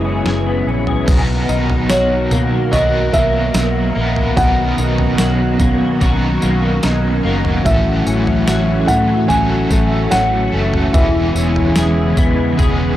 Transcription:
Already playing: fingered electric bass F#1, clean electric guitar F#2 G#4, string machine C#3 F#3 G#3 B3 E4, felt piano B4
0.05 clean electric guitar C#4
0.25 fingered electric bass F#1, clean electric guitar G#4, snare
0.46 clean electric guitar B3
0.67 fingered electric bass A#1, clean electric guitar C#4
0.87 clean electric guitar G#4, floor tom
1.06 fingered electric bass B1, overdriven electric guitar B2 F#3, string machine D#3 F#3 F#4 A#4, kick, floor tom, crash, tambourine
1.10 overdriven electric guitar B3 D#4 A#4
1.49 fingered electric bass B1, clean electric guitar D#4, tambourine
1.70 floor tom
1.89 fingered electric bass B1, clean electric guitar F#4, felt piano C#5, snare, tambourine
2.31 fingered electric bass B2, clean electric guitar A#3, floor tom, tambourine
2.72 fingered electric bass B1, overdriven electric guitar F#3 B3, clean electric guitar F#4, felt piano D#5, floor tom, tambourine
2.77 overdriven electric guitar A#4
3.13 fingered electric bass B1, clean electric guitar A#3, felt piano E5, kick, tambourine
3.54 fingered electric bass B1, snare, tambourine
3.95 fingered electric bass A#1, clean electric guitar A#3, overdriven electric guitar A#4
4.00 overdriven electric guitar B3
4.16 floor tom
4.35 fingered electric bass B1, overdriven electric guitar B2 F#3, clean electric guitar B2, string machine C#4, felt piano F#5, kick, floor tom, tambourine
4.40 overdriven electric guitar B3 D#4 A#4
4.78 fingered electric bass B1, clean electric guitar D#4, tambourine
4.98 floor tom
5.18 fingered electric bass B1, clean electric guitar F#4, snare, tambourine
5.60 fingered electric bass B2, clean electric guitar A#3, kick, floor tom, tambourine
6.00 fingered electric bass B1, overdriven electric guitar F#3 B3 D#4, clean electric guitar F#4, kick, floor tom, tambourine
6.05 overdriven electric guitar A#4
6.42 fingered electric bass B1, clean electric guitar A#3, tambourine
6.83 fingered electric bass B1, clean electric guitar D#4, snare, tambourine
7.23 fingered electric bass F#1, clean electric guitar A#3, overdriven electric guitar D#4 A#4
7.29 overdriven electric guitar B3
7.45 floor tom
7.64 fingered electric bass A1, overdriven electric guitar A2 E3 F#3, clean electric guitar A2, string machine E3 A3, felt piano E5, kick, floor tom, tambourine
7.69 overdriven electric guitar A3 C#4 A4
8.06 fingered electric bass A1, clean electric guitar C#4, tambourine
8.27 floor tom
8.47 fingered electric bass A1, clean electric guitar F#4, snare, tambourine
8.87 fingered electric bass A2, clean electric guitar A3, felt piano F#5, floor tom, tambourine
9.28 fingered electric bass A1, overdriven electric guitar F#3 A3 C#4, clean electric guitar F#4, felt piano G#5, floor tom, tambourine
9.34 overdriven electric guitar A4
9.71 fingered electric bass A1, clean electric guitar A3, kick, tambourine
10.11 fingered electric bass A1, clean electric guitar C#4, felt piano F#5, snare, tambourine
10.52 fingered electric bass F#1, clean electric guitar A3, overdriven electric guitar A3 C#4 A4
10.58 overdriven electric guitar F#3
10.74 floor tom
10.92 fingered electric bass E1, string machine C#3 G#3 B3 E4, overdriven electric guitar E3 G#3, clean electric guitar E3, felt piano E5, kick, floor tom, tambourine
10.97 overdriven electric guitar B3 C#4 G#4
11.35 fingered electric bass E1, clean electric guitar C#4, tambourine
11.56 floor tom
11.76 fingered electric bass E1, clean electric guitar G#4, snare, tambourine
12.17 fingered electric bass E2, clean electric guitar B3, kick, floor tom, tambourine
12.57 fingered electric bass E1, overdriven electric guitar G#3 B3 C#4, clean electric guitar G#4, kick, floor tom, tambourine
12.63 overdriven electric guitar G#4

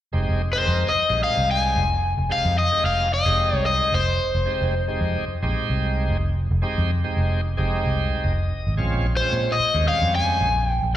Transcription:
0.13 fingered electric bass F1, tonewheel organ G#3 C4 D#4 G4
0.29 fingered electric bass F1
0.53 tonewheel organ G#3 C4 D#4 A#4, overdriven electric guitar C5
0.68 fingered electric bass F2
0.89 overdriven electric guitar D#5
0.95 muted fingered electric bass stroke
1.09 fingered electric bass A#1, tonewheel organ G3 G#3 C4 D#4
1.24 overdriven electric guitar F5
1.37 fingered electric bass C2
1.51 overdriven electric guitar G#5
1.76 fingered electric bass F1
2.17 fingered electric bass F1
2.29 tonewheel organ G#3 C4 D#4 G4, overdriven electric guitar F5
2.45 fingered electric bass F2
2.58 overdriven electric guitar D#5
2.71 tonewheel organ G#3 C4 D#4 G4
2.84 fingered electric bass F1, overdriven electric guitar F5
3.14 overdriven electric guitar D#5
3.25 fingered electric bass F1, tonewheel organ G#3 C4 D#4 G4
3.53 fingered electric bass C2
3.66 overdriven electric guitar D#5
3.92 fingered electric bass F1, overdriven electric guitar C5
4.35 fingered electric bass F1
4.46 tonewheel organ G#3 C4 D#4 G4
4.61 fingered electric bass F1
4.88 tonewheel organ G#3 C4 D#4 G4
5.01 fingered electric bass F2
5.28 muted fingered electric bass stroke
5.43 fingered electric bass A#1, tonewheel organ G#3 C4 D#4 G4
5.70 fingered electric bass C2
6.09 fingered electric bass F1
6.51 fingered electric bass F1
6.62 tonewheel organ G#3 C4 D#4 G4
6.78 fingered electric bass F2
7.04 tonewheel organ G#3 C4 D#4 G4
7.17 fingered electric bass F1
7.57 fingered electric bass F1, tonewheel organ G#3 C4 D#4 G4
7.86 fingered electric bass C2
8.24 fingered electric bass F1, tonewheel organ D#5
8.67 fingered electric bass G#1
8.77 fingered electric bass A#1, tonewheel organ G#3 C4 C#4 F4
8.94 fingered electric bass A#1
9.17 tonewheel organ G#3 C4, overdriven electric guitar C5
9.21 tonewheel organ C#4 F4
9.33 fingered electric bass A#2
9.52 overdriven electric guitar D#5
9.60 muted fingered electric bass stroke
9.74 fingered electric bass D#2, tonewheel organ G3 G#3 C4 C#4
9.88 overdriven electric guitar F5
10.02 fingered electric bass F2
10.15 overdriven electric guitar G#5
10.41 fingered electric bass A#1
10.67 overdriven electric guitar G5
10.83 fingered electric bass A#1

